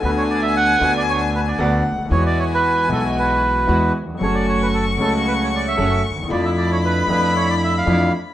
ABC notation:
X:1
M:4/4
L:1/16
Q:1/4=115
K:Emix
V:1 name="Violin"
g12 f4 | g12- g2 z2 | c'16 | b16 |]
V:2 name="Bandoneon"
B c d e f3 d c2 B d3 z2 | c d c B3 A2 B6 z2 | c d c B A2 A2 B c d e3 z2 | d e d c B2 B2 c d e =f3 z2 |]
V:3 name="String section"
[A,B,D]6 [A,B,D]6 [A,B,D]2 z2 | [G,EF]6 [G,EF]6 [G,EF]2 z2 | [A,CF]6 [A,CF]6 [A,CF]2 z2 | [DE]6 [DE]6 [=F,DE]2 z2 |]
V:4 name="Grand piano" clef=bass
[D,,D,A,B,F]6 [D,,D,A,B,F]6 [D,,D,A,B,F]2 z/2 C,,/2 D,,/2 ^D,,/2 | [E,,E,G,B,F]6 [B,,,B,,E,G,B,F]6 [E,,E,G,B,F]2 z/2 ^D,,/2 E,,/2 =F,,/2 | [F,,F,A,CA]6 [C,,C,F,A,CA]6 [F,,F,A,CA]2 z/2 D,,/2 ^D,,/2 E,,/2 | [=F,,=F,A,DE=F]6 [F,,F,A,DEF]6 [F,,E,F,A,DF]2 z2 |]
V:5 name="Upright bass" clef=bass
D,,4- D,,3/2 z/2 D,,4- D,,3/2 z/2 D,,3/2 z C,,/2 D,,/2 ^D,,/2 | E,,4- E,,3/2 z/2 B,,,4- B,,,3/2 z/2 E,,3/2 z2 z/2 | F,,,4- F,,,3/2 z/2 C,,4- C,,3/2 z/2 F,,,3/2 z D,,/2 ^D,,/2 E,,/2 | =F,,4- F,,3/2 z/2 F,,4- F,,3/2 z/2 F,,3/2 z2 z/2 |]